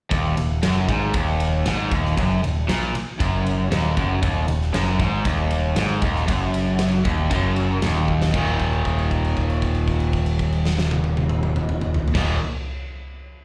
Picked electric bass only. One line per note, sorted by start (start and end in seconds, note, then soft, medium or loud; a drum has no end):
0.12 0.35 D#1 medium
0.37 0.61 D#1 medium
0.64 0.87 F#1 medium
0.89 1.13 G#1 loud
1.14 1.62 D#1 medium
1.67 1.90 G#1 loud
1.92 2.15 D#1 medium
2.18 2.41 F#1 medium
2.44 2.67 D#1 medium
2.69 2.92 A#1 medium
2.95 muted picked electric bass stroke soft
3.20 3.68 F#1 medium
3.71 3.95 D#1 loud
3.97 4.21 F#1 medium
4.23 4.47 D#1 medium
4.49 4.72 D#1 medium
4.74 4.98 F#1 medium
4.99 5.23 G#1 loud
5.26 5.73 D#1 medium
5.76 6.00 G#1 loud
6.02 6.26 D#1 medium
6.28 7.01 F#1 medium
7.05 7.29 D#1 medium
7.31 7.79 F#1 medium
7.83 8.30 D#1 medium
8.34 12.05 D#1 medium
12.15 12.36 D#1 medium